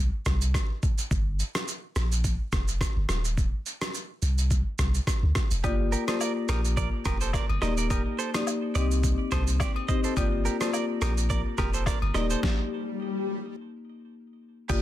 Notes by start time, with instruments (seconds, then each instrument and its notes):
Already playing: sub bass C2
0.26 sub bass C2, kick, cross-stick, shaker
0.41 shaker
0.54 kick, cross-stick, shaker
0.83 kick, shaker
0.98 shaker
1.11 sub bass G1, kick, shaker
1.40 shaker
1.55 cross-stick, shaker
1.68 shaker
1.96 sub bass A#1, cross-stick, shaker
2.12 shaker
2.24 kick, shaker
2.52 sub bass F1, kick, cross-stick, shaker
2.68 shaker
2.81 kick, cross-stick, shaker
2.96 sub bass G1
3.09 sub bass D#1, cross-stick, shaker
3.25 shaker
3.37 kick, shaker
3.66 shaker
3.82 cross-stick, shaker
3.94 shaker
4.22 sub bass C2, shaker
4.38 shaker
4.51 kick, shaker
4.78 sub bass C2, kick, cross-stick, shaker
4.94 shaker
5.07 kick, cross-stick, shaker
5.23 sub bass D2
5.35 kick, cross-stick, shaker
5.51 sub bass F1, shaker
5.64 sub bass G1, marimba A#3 F4 G4 D5, clean electric guitar D4 G4, kick, high agogo, shaker
5.92 clean electric guitar G4 A#4, shaker
6.08 marimba A#3 F4 G4 D5, clean electric guitar A4 C5, cross-stick, high agogo, shaker
6.21 clean electric guitar A#4 D5, low woodblock, shaker
6.49 sub bass A#1, clean electric guitar G4 A#4, cross-stick, high agogo, shaker
6.65 shaker
6.77 clean electric guitar A#4 D5, kick, shaker
7.05 sub bass F1, clean electric guitar G4 A#4, kick, cross-stick, high agogo, shaker
7.21 clean electric guitar A4 C5, shaker
7.33 clean electric guitar A#4 D5, kick, cross-stick, low woodblock, shaker
7.49 sub bass G1, high agogo
7.62 sub bass D#1, marimba A#3 D#4 G4 D5, clean electric guitar A#4 D#5, cross-stick, shaker
7.77 clean electric guitar A#4 D5, shaker
7.90 clean electric guitar G4 A#4, kick, high agogo, shaker
8.19 clean electric guitar A4 C5, shaker
8.34 marimba A#3 D#4 G4 D5, cross-stick, high agogo, shaker
8.47 low woodblock, shaker
8.75 sub bass C2, marimba C4 D#4 G4 D#5, clean electric guitar G4 D5, high agogo, shaker
8.91 shaker
9.03 kick, shaker
9.31 sub bass C2, clean electric guitar A4 C5, kick, cross-stick, high agogo, shaker
9.47 shaker
9.60 clean electric guitar G4 D5, kick, cross-stick, low woodblock, shaker
9.76 high agogo
9.88 marimba C4 D#4 G4 D#5, clean electric guitar C5 D#5, kick, shaker
10.04 clean electric guitar A4 C5, shaker
10.17 sub bass G1, marimba A#3 F4 G4 D5, clean electric guitar D4 G4, kick, swell, high agogo, shaker
10.45 clean electric guitar G4 A#4, shaker
10.60 marimba A#3 F4 G4 D5, clean electric guitar A4 C5, cross-stick, high agogo, shaker
10.73 clean electric guitar A#4 D5, low woodblock, shaker
11.02 sub bass A#1, clean electric guitar G4 A#4, cross-stick, high agogo, shaker
11.18 shaker
11.30 clean electric guitar A#4 D5, kick, shaker
11.58 sub bass F1, clean electric guitar G4 A#4, kick, cross-stick, high agogo, shaker
11.74 clean electric guitar A4 C5, shaker
11.86 clean electric guitar A#4 D5, kick, cross-stick, low woodblock, shaker
12.02 sub bass G1, high agogo
12.14 sub bass D#1, marimba A#3 D#4 G4 D5, clean electric guitar A#4 D#5, cross-stick, shaker
12.30 clean electric guitar A4 C5, shaker
12.43 kick, snare
14.69 sub bass G1, marimba A#3 F4 G4 D5, clean electric guitar D4 G4, kick, downlifter, high agogo, shaker